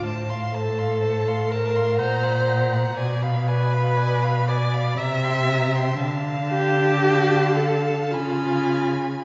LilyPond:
<<
  \new Staff \with { instrumentName = "Violin" } { \time 3/4 \key d \minor \tempo 4 = 60 a''16 c'''16 a''16 c'''16 a''16 c'''16 a''16 c'''16 ges''16 bes''16 ges''16 bes''16 | gis''16 b''16 gis''16 b''16 gis''16 b''16 gis''16 b''16 bes''16 c'''16 bes''16 c'''16 | a''2 ces'''4 | }
  \new Staff \with { instrumentName = "Violin" } { \time 3/4 \key d \minor c''16 f''16 c''16 f''16 c''16 f''16 c''16 f''16 bes''16 ges''16 bes''16 ges''16 | d''16 f''16 d''16 f''16 d''16 f''16 d''16 f''16 e''16 g''16 e''16 g''16 | f''4 f''4 aes''4 | }
  \new Staff \with { instrumentName = "Viola" } { \time 3/4 \key d \minor r8 a'4 bes'8 c''4 | r8 b'4 d''8 e''4 | r8 g'4 a'8 f'4 | }
  \new Staff \with { instrumentName = "Cello" } { \clef bass \time 3/4 \key d \minor a,2 bes,4 | b,2 c4 | d2 des4 | }
>>